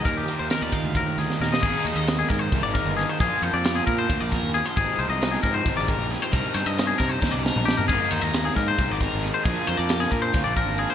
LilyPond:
<<
  \new Staff \with { instrumentName = "Clean electric guitar" } { \time 7/8 \key aes \lydian \tempo 4 = 134 bes'16 g'8 c''16 bes'16 d''16 f''8 bes'8 aes'8 bes'16 ees''16 | aes'8 c''16 ees''8 aes'16 bes'16 c''8 d''16 bes'8 aes'16 c''16 | aes'8 c''16 d''8 aes'16 bes'16 c''8 d''16 bes'8 aes'16 c''16 | aes'8 c''16 ees''8 aes'16 bes'16 c''8 d''16 bes'8 aes'16 c''16 |
bes'8 c''16 ees''8 aes'16 bes'16 c''8 d''16 bes'8 g'16 bes'16 | aes'8 c''16 ees''8 aes'16 bes'16 c''8 d''16 bes'8 aes'16 c''16 | aes'8 c''16 d''8 aes'16 bes'16 c''8 d''16 bes'8 aes'16 c''16 | }
  \new Staff \with { instrumentName = "Overdriven electric guitar" } { \clef bass \time 7/8 \key aes \lydian <ees, bes, ees g bes ees'>8 <ees g bes ees'>8 <ees, bes, ees g bes ees'>4. <ees g bes ees'>8 <ees g bes ees'>8 | <aes, ees aes bes ees'>2 <aes, ees aes bes ees'>4. | <bes, f bes d' f'>2 <bes, f bes d' f'>4. | <f, c f aes c' ees'>2 <f, c f aes c' ees'>4. |
<c g c' d' ees'>2 <c g c' d' ees'>4. | <aes, ees aes bes ees'>2 <aes, ees aes bes ees'>4. | <bes, f bes d' f'>2 <bes, f bes d' f'>4. | }
  \new Staff \with { instrumentName = "Clean electric guitar" } { \clef bass \time 7/8 \key aes \lydian << { r8 f'2. | r2. r8 | r2. r8 | r2. r8 |
r2. r8 | r2. r8 | r2. r8 | } \\ { <ees, ees>4. ees4. bes,8 | r2. r8 | r2. r8 | r2. r8 |
r2. r8 | r2. r8 | r2. r8 | } >> }
  \new Staff \with { instrumentName = "Fingered electric bass" } { \clef bass \time 7/8 \key aes \lydian ees,8 r16 ees,16 r16 ees,16 r16 d,8 r16 d,16 r16 ees,16 r16 | aes,,16 r16 ees,16 ees,8. aes,8 c,16 aes,,8 g,,8 r16 | bes,,16 r16 f,16 f,8. bes,8 d,16 bes,,8 ees,8 r16 | aes,,16 r16 c,16 c,8. aes,8 aes,,16 aes,,8 bes,,8 r16 |
c,16 r16 g,16 g,8. c8 ees,16 c,8 bes,,8 r16 | aes,,16 r16 ees,16 ees,8. aes,8 c,16 aes,,8 aes,,8 r16 | bes,,16 r16 f,16 f,8. bes,8 d,16 bes,,8 aes,,8 r16 | }
  \new DrumStaff \with { instrumentName = "Drums" } \drummode { \time 7/8 <hh bd>8 hh8 <hh sn>8 <hh bd>8 <hh bd>8 hh16 sn16 sn16 sn16 | <cymc bd>8 cymr8 <cymr sn>8 <bd cymr sn>8 <bd cymr>8 <bd cymr>8 <cymr sn>8 | <bd cymr>8 cymr8 <cymr sn>8 <bd cymr>8 <bd cymr>8 <bd cymr sn>8 <cymr sn>8 | <bd cymr>8 cymr8 <cymr sn>8 <bd cymr sn>8 <bd cymr sn>8 <bd cymr>8 <cymr sn>8 |
<bd cymr>8 <cymr sn>8 <cymr sn>8 <bd cymr sn>8 <bd sn>8 sn16 toml16 sn16 tomfh16 | <cymc bd cymr>8 cymr8 <cymr sn>8 <bd cymr sn>8 <bd cymr sn>8 <bd cymr sn>8 <cymr sn>8 | <bd cymr>8 cymr8 <cymr sn>8 <bd cymr>8 <bd cymr sn>8 <bd cymr>8 cymr8 | }
>>